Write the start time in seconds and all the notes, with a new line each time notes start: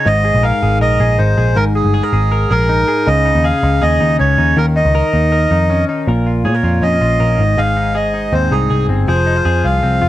Already playing: D#4
0.06 G#1 G#2 D#5
0.25 G#4
0.35 A#1
0.43 A#4 F5
0.62 G#1 G#4
0.81 A#1 A#4 D#5
1.00 A#1 G#4
1.18 G#1 D#4 C5
1.37 A#1 G#4
1.56 G#1 G#2 A#4
1.75 G#4
1.84 G1
1.94 G#4
2.03 A#4
2.13 G#1 G#4
2.32 A#4
2.51 A#1 G#4 A#4
2.69 D#4
2.88 G#4
3.06 C#2 C#3 D#5
3.25 D#4
3.35 D#2
3.44 G#4 F5
3.63 C#2 D#4
3.82 D#2 G#4 D#5
4.00 D#2 D#4
4.19 C#2 C#4 C#5
4.38 D#2 D#4
4.57 D#2 D#3 A#4
4.76 D#4 D#5
4.85 C#2
4.95 A#4
5.13 D#2 D#4
5.32 A#4
5.51 F2 D#4
5.70 C#4
5.89 D#4
6.07 A#1 A#2 A#4
6.26 F4
6.45 A#2 G#4 C#5
6.55 A#4
6.63 F2 F4
6.82 F2 C#4 D#5
7.01 A#1 F4
7.20 A#1 A#4
7.39 G#1 G#2
7.57 G#1 G#2 G#4 F5
7.77 D#4
7.95 G#4 D#5
8.14 D#4
8.33 D#2 C4 C5
8.51 C2 D#4 G#4
8.70 C2 G#4
8.89 G1 C4
9.07 F1 F3 G#4 C5
9.26 D#4
9.36 F4
9.45 F2 G#4
9.64 C2 F4 F5
9.83 C2 C4
10.02 F1 F4